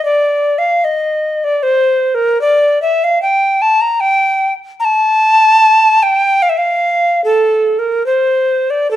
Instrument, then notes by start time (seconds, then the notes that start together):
recorder
0.05 D5
0.58 F5
0.84 D#5
1.44 D5
1.63 C5
2.15 A#4
2.41 D5
2.82 E5
3.04 F5
3.22 G5
3.62 A5
3.81 A#5
4.00 G5
4.80 A#5
4.85 A5
6.03 G5
6.42 F5
6.49 E5
6.58 F5
7.24 A4
7.79 A#4
8.06 C5
8.70 D5
8.91 A4